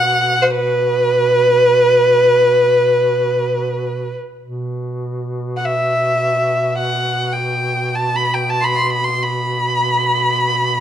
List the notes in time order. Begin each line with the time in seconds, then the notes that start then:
Already playing: B2 F#5
0.42 C5
0.51 B4
4.43 B2
5.57 F#5
5.65 E5
6.78 F#5
7.33 G5
7.95 A5
8.16 B5
8.34 G5
8.50 A5
8.61 B5 C6
8.76 C6
8.87 B5 C6
9.04 C6
9.23 B5